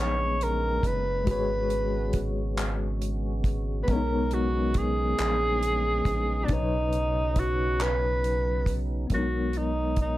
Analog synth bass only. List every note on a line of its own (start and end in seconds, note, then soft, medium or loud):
0.00 0.81 A#1 medium
0.84 1.29 F#1 medium
1.28 3.85 G#1 medium
3.89 5.15 B1 loud
5.20 6.02 A#1 medium
6.06 6.45 A#1 medium
6.50 9.06 B1 loud
9.11 10.18 B1 loud